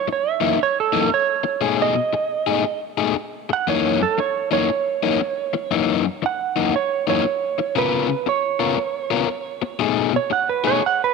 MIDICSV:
0, 0, Header, 1, 4, 480
1, 0, Start_track
1, 0, Tempo, 511509
1, 1514, Time_signature, 4, 2, 24, 8
1, 10452, End_track
2, 0, Start_track
2, 0, Title_t, "Electric slide guitar"
2, 0, Program_c, 0, 29
2, 117, Note_on_c, 0, 73, 74
2, 279, Note_off_c, 0, 73, 0
2, 279, Note_on_c, 0, 76, 76
2, 567, Note_off_c, 0, 76, 0
2, 591, Note_on_c, 0, 73, 89
2, 728, Note_off_c, 0, 73, 0
2, 751, Note_on_c, 0, 69, 79
2, 1043, Note_off_c, 0, 69, 0
2, 1068, Note_on_c, 0, 73, 81
2, 1672, Note_off_c, 0, 73, 0
2, 1709, Note_on_c, 0, 75, 91
2, 2623, Note_off_c, 0, 75, 0
2, 3313, Note_on_c, 0, 78, 100
2, 3452, Note_off_c, 0, 78, 0
2, 3465, Note_on_c, 0, 73, 92
2, 3757, Note_off_c, 0, 73, 0
2, 3778, Note_on_c, 0, 69, 91
2, 3924, Note_off_c, 0, 69, 0
2, 3939, Note_on_c, 0, 73, 83
2, 4234, Note_off_c, 0, 73, 0
2, 4250, Note_on_c, 0, 73, 95
2, 5644, Note_off_c, 0, 73, 0
2, 5873, Note_on_c, 0, 78, 85
2, 6321, Note_off_c, 0, 78, 0
2, 6341, Note_on_c, 0, 73, 82
2, 6635, Note_off_c, 0, 73, 0
2, 6660, Note_on_c, 0, 73, 77
2, 7272, Note_off_c, 0, 73, 0
2, 7304, Note_on_c, 0, 71, 100
2, 7757, Note_off_c, 0, 71, 0
2, 7777, Note_on_c, 0, 73, 83
2, 9170, Note_off_c, 0, 73, 0
2, 9536, Note_on_c, 0, 73, 100
2, 9683, Note_off_c, 0, 73, 0
2, 9690, Note_on_c, 0, 78, 88
2, 9839, Note_off_c, 0, 78, 0
2, 9848, Note_on_c, 0, 71, 90
2, 9998, Note_off_c, 0, 71, 0
2, 10015, Note_on_c, 0, 73, 109
2, 10162, Note_off_c, 0, 73, 0
2, 10194, Note_on_c, 0, 78, 97
2, 10332, Note_off_c, 0, 78, 0
2, 10360, Note_on_c, 0, 71, 98
2, 10452, Note_off_c, 0, 71, 0
2, 10452, End_track
3, 0, Start_track
3, 0, Title_t, "Overdriven electric guitar"
3, 0, Program_c, 1, 29
3, 381, Note_on_c, 1, 63, 80
3, 384, Note_on_c, 1, 58, 74
3, 386, Note_on_c, 1, 52, 75
3, 392, Note_on_c, 1, 42, 60
3, 541, Note_off_c, 1, 42, 0
3, 541, Note_off_c, 1, 52, 0
3, 542, Note_off_c, 1, 58, 0
3, 545, Note_off_c, 1, 63, 0
3, 869, Note_on_c, 1, 63, 83
3, 876, Note_on_c, 1, 58, 88
3, 878, Note_on_c, 1, 52, 73
3, 881, Note_on_c, 1, 42, 65
3, 1013, Note_off_c, 1, 42, 0
3, 1015, Note_off_c, 1, 52, 0
3, 1020, Note_off_c, 1, 58, 0
3, 1022, Note_off_c, 1, 63, 0
3, 1512, Note_on_c, 1, 47, 83
3, 1514, Note_on_c, 1, 57, 76
3, 1517, Note_on_c, 1, 63, 89
3, 1523, Note_on_c, 1, 68, 97
3, 1823, Note_off_c, 1, 63, 0
3, 1823, Note_off_c, 1, 68, 0
3, 1826, Note_off_c, 1, 57, 0
3, 1829, Note_off_c, 1, 47, 0
3, 2315, Note_on_c, 1, 68, 75
3, 2320, Note_on_c, 1, 63, 76
3, 2322, Note_on_c, 1, 57, 59
3, 2327, Note_on_c, 1, 47, 59
3, 2463, Note_off_c, 1, 47, 0
3, 2466, Note_off_c, 1, 57, 0
3, 2471, Note_off_c, 1, 63, 0
3, 2472, Note_off_c, 1, 68, 0
3, 2793, Note_on_c, 1, 68, 88
3, 2794, Note_on_c, 1, 63, 92
3, 2802, Note_on_c, 1, 57, 83
3, 2805, Note_on_c, 1, 47, 71
3, 2950, Note_off_c, 1, 47, 0
3, 2952, Note_off_c, 1, 57, 0
3, 2956, Note_off_c, 1, 63, 0
3, 2956, Note_off_c, 1, 68, 0
3, 3448, Note_on_c, 1, 42, 84
3, 3453, Note_on_c, 1, 52, 84
3, 3453, Note_on_c, 1, 58, 94
3, 3457, Note_on_c, 1, 63, 89
3, 3749, Note_off_c, 1, 63, 0
3, 3755, Note_off_c, 1, 58, 0
3, 3757, Note_off_c, 1, 42, 0
3, 3758, Note_off_c, 1, 52, 0
3, 4234, Note_on_c, 1, 63, 78
3, 4240, Note_on_c, 1, 58, 82
3, 4244, Note_on_c, 1, 42, 70
3, 4245, Note_on_c, 1, 52, 64
3, 4391, Note_off_c, 1, 42, 0
3, 4397, Note_off_c, 1, 52, 0
3, 4397, Note_off_c, 1, 63, 0
3, 4400, Note_off_c, 1, 58, 0
3, 4719, Note_on_c, 1, 63, 90
3, 4722, Note_on_c, 1, 58, 90
3, 4729, Note_on_c, 1, 52, 77
3, 4731, Note_on_c, 1, 42, 77
3, 4874, Note_off_c, 1, 42, 0
3, 4877, Note_off_c, 1, 52, 0
3, 4879, Note_off_c, 1, 58, 0
3, 4879, Note_off_c, 1, 63, 0
3, 5358, Note_on_c, 1, 42, 80
3, 5363, Note_on_c, 1, 52, 82
3, 5366, Note_on_c, 1, 63, 85
3, 5367, Note_on_c, 1, 58, 82
3, 5663, Note_off_c, 1, 63, 0
3, 5670, Note_off_c, 1, 52, 0
3, 5670, Note_off_c, 1, 58, 0
3, 5673, Note_off_c, 1, 42, 0
3, 6157, Note_on_c, 1, 63, 89
3, 6160, Note_on_c, 1, 52, 71
3, 6162, Note_on_c, 1, 58, 75
3, 6168, Note_on_c, 1, 42, 75
3, 6310, Note_off_c, 1, 42, 0
3, 6311, Note_off_c, 1, 52, 0
3, 6316, Note_off_c, 1, 58, 0
3, 6319, Note_off_c, 1, 63, 0
3, 6637, Note_on_c, 1, 63, 83
3, 6638, Note_on_c, 1, 58, 82
3, 6643, Note_on_c, 1, 52, 74
3, 6646, Note_on_c, 1, 42, 76
3, 6791, Note_off_c, 1, 42, 0
3, 6795, Note_off_c, 1, 58, 0
3, 6796, Note_off_c, 1, 52, 0
3, 6796, Note_off_c, 1, 63, 0
3, 7278, Note_on_c, 1, 49, 91
3, 7284, Note_on_c, 1, 59, 82
3, 7287, Note_on_c, 1, 65, 92
3, 7289, Note_on_c, 1, 70, 88
3, 7580, Note_off_c, 1, 70, 0
3, 7588, Note_off_c, 1, 65, 0
3, 7590, Note_off_c, 1, 59, 0
3, 7594, Note_off_c, 1, 49, 0
3, 8067, Note_on_c, 1, 70, 77
3, 8069, Note_on_c, 1, 65, 79
3, 8073, Note_on_c, 1, 59, 69
3, 8076, Note_on_c, 1, 49, 69
3, 8224, Note_off_c, 1, 49, 0
3, 8224, Note_off_c, 1, 59, 0
3, 8229, Note_off_c, 1, 65, 0
3, 8229, Note_off_c, 1, 70, 0
3, 8545, Note_on_c, 1, 65, 85
3, 8546, Note_on_c, 1, 70, 83
3, 8552, Note_on_c, 1, 59, 79
3, 8555, Note_on_c, 1, 49, 78
3, 8694, Note_off_c, 1, 49, 0
3, 8699, Note_off_c, 1, 65, 0
3, 8700, Note_off_c, 1, 59, 0
3, 8704, Note_off_c, 1, 70, 0
3, 9189, Note_on_c, 1, 47, 99
3, 9195, Note_on_c, 1, 57, 84
3, 9197, Note_on_c, 1, 63, 95
3, 9200, Note_on_c, 1, 68, 86
3, 9499, Note_off_c, 1, 68, 0
3, 9503, Note_off_c, 1, 63, 0
3, 9506, Note_off_c, 1, 57, 0
3, 9509, Note_off_c, 1, 47, 0
3, 9985, Note_on_c, 1, 68, 75
3, 9988, Note_on_c, 1, 63, 78
3, 9990, Note_on_c, 1, 57, 65
3, 9995, Note_on_c, 1, 47, 70
3, 10141, Note_off_c, 1, 47, 0
3, 10141, Note_off_c, 1, 57, 0
3, 10144, Note_off_c, 1, 63, 0
3, 10145, Note_off_c, 1, 68, 0
3, 10452, End_track
4, 0, Start_track
4, 0, Title_t, "Muted overdriven electric guitar strokes"
4, 72, Note_on_c, 9, 29, 40
4, 166, Note_off_c, 9, 29, 0
4, 552, Note_on_c, 9, 29, 44
4, 646, Note_off_c, 9, 29, 0
4, 1024, Note_on_c, 9, 29, 45
4, 1118, Note_off_c, 9, 29, 0
4, 1347, Note_on_c, 9, 29, 45
4, 1440, Note_off_c, 9, 29, 0
4, 1834, Note_on_c, 9, 29, 50
4, 1928, Note_off_c, 9, 29, 0
4, 1999, Note_on_c, 9, 29, 49
4, 2092, Note_off_c, 9, 29, 0
4, 2474, Note_on_c, 9, 29, 50
4, 2568, Note_off_c, 9, 29, 0
4, 2961, Note_on_c, 9, 29, 47
4, 3055, Note_off_c, 9, 29, 0
4, 3279, Note_on_c, 9, 29, 47
4, 3373, Note_off_c, 9, 29, 0
4, 3760, Note_on_c, 9, 29, 57
4, 3854, Note_off_c, 9, 29, 0
4, 3923, Note_on_c, 9, 29, 40
4, 4017, Note_off_c, 9, 29, 0
4, 4403, Note_on_c, 9, 29, 47
4, 4496, Note_off_c, 9, 29, 0
4, 4885, Note_on_c, 9, 29, 40
4, 4979, Note_off_c, 9, 29, 0
4, 5193, Note_on_c, 9, 29, 47
4, 5287, Note_off_c, 9, 29, 0
4, 5675, Note_on_c, 9, 29, 47
4, 5768, Note_off_c, 9, 29, 0
4, 5840, Note_on_c, 9, 29, 45
4, 5934, Note_off_c, 9, 29, 0
4, 6322, Note_on_c, 9, 29, 45
4, 6415, Note_off_c, 9, 29, 0
4, 6802, Note_on_c, 9, 29, 41
4, 6896, Note_off_c, 9, 29, 0
4, 7117, Note_on_c, 9, 29, 41
4, 7210, Note_off_c, 9, 29, 0
4, 7592, Note_on_c, 9, 29, 51
4, 7686, Note_off_c, 9, 29, 0
4, 7755, Note_on_c, 9, 29, 47
4, 7848, Note_off_c, 9, 29, 0
4, 8235, Note_on_c, 9, 29, 46
4, 8329, Note_off_c, 9, 29, 0
4, 8706, Note_on_c, 9, 29, 45
4, 8799, Note_off_c, 9, 29, 0
4, 9026, Note_on_c, 9, 29, 48
4, 9120, Note_off_c, 9, 29, 0
4, 9510, Note_on_c, 9, 29, 51
4, 9604, Note_off_c, 9, 29, 0
4, 9668, Note_on_c, 9, 29, 47
4, 9762, Note_off_c, 9, 29, 0
4, 10152, Note_on_c, 9, 29, 51
4, 10246, Note_off_c, 9, 29, 0
4, 10452, End_track
0, 0, End_of_file